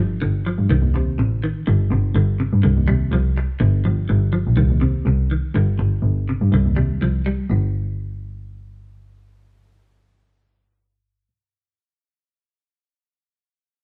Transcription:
0.00 0.16 F3 medium
0.22 0.50 G1 medium
0.22 0.40 D3 medium
0.46 0.65 F3 medium
0.58 0.67 G2 medium
0.70 0.79 C2 loud
0.70 0.89 D#3 medium
0.82 0.91 D#2 medium
0.94 1.12 C3 medium
0.94 1.14 C3 medium
1.19 1.37 A1 medium
1.19 1.38 C3 medium
1.44 1.62 D#3 medium
1.67 1.85 G1 medium
1.67 1.86 D3 medium
1.91 2.00 G1 medium
1.91 2.10 C3 medium
2.15 2.43 G1 medium
2.15 2.34 D3 medium
2.40 2.59 C3 medium
2.53 2.61 G2 medium
2.63 2.74 C2 medium
2.63 2.82 D3 medium
2.77 2.85 D#2 medium
2.88 3.07 C3 medium
2.88 3.07 G3 medium
3.12 3.30 C2 medium
3.12 3.32 F3 medium
3.38 muted clean electric guitar stroke medium
3.60 3.79 G1 medium
3.60 3.79 D3 medium
3.85 3.96 G1 medium
3.85 4.04 F3 medium
4.09 4.38 G1 medium
4.09 4.28 D3 medium
4.33 4.52 F3 medium
4.47 4.55 A#1 medium
4.57 4.67 C2 loud
4.57 4.76 D#3 medium
4.70 4.79 D#2 medium
4.81 5.00 C3 medium
4.81 5.01 C3 medium
5.05 5.24 C2 medium
5.05 5.26 C3 medium
5.31 5.50 D#3 medium
5.55 5.73 G1 loud
5.55 5.75 D3 medium
5.79 5.89 G1 medium
5.79 muted clean electric guitar stroke medium
6.02 6.31 G1 medium
6.29 6.48 C3 medium
6.42 6.50 G2 medium
6.52 6.62 C2 medium
6.52 6.72 D3 medium
6.66 6.74 D#2 medium
6.76 6.96 C3 medium
6.76 6.96 G3 medium
7.02 7.20 C2 medium
7.02 7.21 F3 medium
7.26 7.45 G3 medium
7.50 11.45 G1 medium
7.50 7.65 G2 medium

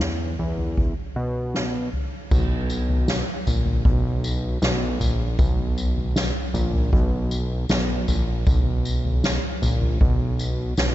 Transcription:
0.00 0.36 E2 medium
0.00 snare loud
0.39 0.94 E2 medium
0.39 floor tom soft
0.58 floor tom medium
0.77 kick medium
0.77 floor tom medium
1.16 1.89 B2 medium
1.54 snare medium
1.93 floor tom medium
2.31 3.24 B1 loud
2.31 kick loud
2.31 floor tom loud
2.31 crash medium
2.31 tambourine medium
2.70 tambourine medium
2.89 floor tom medium
3.08 snare loud
3.08 tambourine loud
3.47 3.83 A#1 medium
3.47 floor tom medium
3.47 tambourine medium
3.66 floor tom medium
3.85 4.58 B1 loud
3.85 kick loud
3.85 floor tom medium
4.24 tambourine medium
4.62 4.99 B1 loud
4.62 snare loud
4.62 tambourine medium
5.00 5.37 A#1 medium
5.00 floor tom medium
5.00 tambourine medium
5.39 6.31 B1 medium
5.39 kick loud
5.39 floor tom loud
5.39 tambourine medium
5.78 tambourine medium
5.97 floor tom medium
6.16 snare loud
6.16 tambourine loud
6.54 6.91 A#1 loud
6.54 floor tom medium
6.54 tambourine medium
6.74 floor tom medium
6.92 7.66 B1 loud
6.92 kick loud
6.92 floor tom medium
7.31 tambourine medium
7.69 8.06 B1 loud
7.69 snare loud
7.69 tambourine loud
8.08 8.45 A#1 medium
8.08 floor tom medium
8.08 tambourine medium
8.47 9.39 B1 loud
8.47 kick loud
8.47 floor tom loud
8.47 tambourine medium
8.85 tambourine medium
9.05 floor tom medium
9.24 snare loud
9.24 tambourine loud
9.62 9.99 A#1 medium
9.62 floor tom medium
9.62 tambourine medium
9.81 floor tom medium
10.01 10.74 B1 loud
10.01 kick medium
10.01 floor tom medium
10.39 tambourine medium
10.77 10.95 B1 loud
10.77 snare loud
10.77 tambourine medium

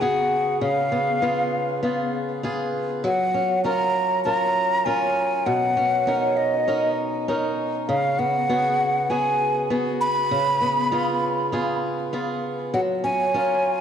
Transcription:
0.00 0.60 C#3 medium
0.00 0.91 B3 medium
0.00 0.68 F#4 medium
0.00 1.23 G#4 medium
0.00 0.61 F#5 medium
0.61 3.04 C#3 medium
0.61 1.79 F5 medium
0.92 1.21 B3 medium
1.22 1.81 B3 medium
1.22 1.83 F4 medium
1.22 1.83 G#4 medium
1.83 2.42 B3 medium
1.83 2.44 F4 medium
1.83 2.43 G#4 medium
2.43 3.10 B3 medium
2.43 3.65 F4 medium
2.43 3.11 G#4 medium
3.04 6.54 F#3 medium
3.04 3.61 F#5 loud
3.34 3.64 C#4 medium
3.64 4.25 C#4 medium
3.64 4.24 F4 medium
3.64 4.26 A#4 medium
3.64 4.21 A#5 loud
4.25 4.85 C#4 medium
4.25 4.85 F4 medium
4.25 4.87 A#4 medium
4.25 4.87 A#5 loud
4.85 5.76 C#4 medium
4.85 5.53 F4 medium
4.85 6.08 A#4 medium
4.85 5.48 G#5 loud
5.46 7.89 B2 medium
5.46 6.38 F#5 loud
5.77 6.07 C#4 medium
6.07 6.67 C#4 medium
6.07 6.67 D#4 medium
6.07 6.68 A#4 medium
6.37 6.98 D#5 medium
6.68 7.28 C#4 medium
6.68 7.28 D#4 medium
6.68 7.28 A#4 medium
7.28 8.19 C#4 medium
7.28 7.95 D#4 medium
7.28 7.95 A#4 medium
7.88 10.30 C#3 medium
7.88 8.20 F5 medium
8.19 8.49 B3 medium
8.19 9.12 F#5 loud
8.49 9.09 B3 medium
8.49 9.09 F#4 medium
8.49 9.11 G#4 medium
9.10 9.70 B3 medium
9.10 9.70 F#4 medium
9.10 9.71 G#4 medium
9.10 9.71 G#5 medium
9.70 10.61 B3 medium
9.70 10.37 F#4 medium
9.70 10.92 G#4 medium
10.01 11.79 B5 loud
10.31 12.74 C#3 medium
10.61 10.90 B3 medium
10.92 11.51 B3 medium
10.92 11.53 F4 medium
10.92 11.52 G#4 medium
11.52 12.12 B3 medium
11.52 12.13 F4 medium
11.52 12.13 G#4 medium
12.13 12.80 B3 medium
12.13 13.34 F4 medium
12.13 12.80 G#4 medium
12.74 13.81 F#3 medium
12.74 12.81 F#5 medium
13.04 13.34 C#4 medium
13.04 13.81 G#5 loud
13.34 13.81 C#4 medium
13.34 13.81 F4 medium
13.34 13.81 A#4 medium

